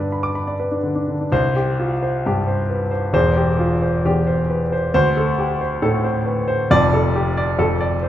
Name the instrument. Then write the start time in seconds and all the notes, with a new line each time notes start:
grand piano
Already playing: G2 D3 D4 D5
0.00 B4
0.12 B5
0.23 D6
0.35 B5
0.47 D5
0.60 B4
0.71 D4
0.83 D3
0.95 D4
1.08 D3
1.21 D4
1.32 C2 C5
1.56 G4
1.80 F4
2.03 C5
2.26 G2 G4
2.47 C5
2.70 B4
2.91 C5
3.13 E1 E2 C5
3.37 G4
3.59 F4
3.82 C5
4.05 E2 G4
4.27 C5
4.50 B4
4.72 C5
4.94 D2 C5
5.17 A4
5.38 G4
5.61 C5
5.82 A2 A4
6.04 C5
6.26 B4
6.48 C5
6.70 F1 F2 D5
6.93 A4
7.16 G4
7.37 D5
7.59 F2 A4
7.81 D5
8.03 C5